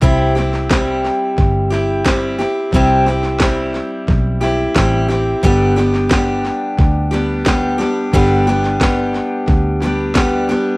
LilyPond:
<<
  \new Staff \with { instrumentName = "Steel-string acoustic guitar" } { \time 4/4 \key c \major \tempo 4 = 89 <c g c' e' g'>8 <c' e' g'>8 <g c' e' g'>4. <c' e' g'>8 <g c' e' g'>8 <c' e' g'>8 | <c g c' e' g'>8 <c' e' g'>8 <g c' e' g'>4. <c' e' g'>8 <g c' e' g'>8 <c' e' g'>8 | <g, d g b d' g'>8 <g b d' g'>8 <g b d' g'>4. <g b d' g'>8 <g b d' g'>8 <g b d' g'>8 | <g, d g b d' g'>8 <g b d' g'>8 <g b d' g'>4. <g b d' g'>8 <g b d' g'>8 <g b d' g'>8 | }
  \new Staff \with { instrumentName = "Fingered electric bass" } { \clef bass \time 4/4 \key c \major c,2 g,,2 | c,2 b,,4 a,,4 | g,,2 d,2 | g,,2 d,2 | }
  \new DrumStaff \with { instrumentName = "Drums" } \drummode { \time 4/4 <bd sn>8 sn16 sn16 <hhp bd sn>8 sn8 <bd sn>8 sn8 <hhp bd sn>8 sn8 | <bd sn>8 sn16 sn16 <hhp bd sn>8 sn8 <bd sn>8 sn8 <hhp bd sn>8 sn8 | <bd sn>8 sn16 sn16 <hhp bd sn>8 sn8 <bd sn>8 sn8 <hhp bd sn>8 sn8 | <bd sn>8 sn16 sn16 <hhp bd sn>8 sn8 <bd sn>8 sn8 <hhp bd sn>8 sn8 | }
>>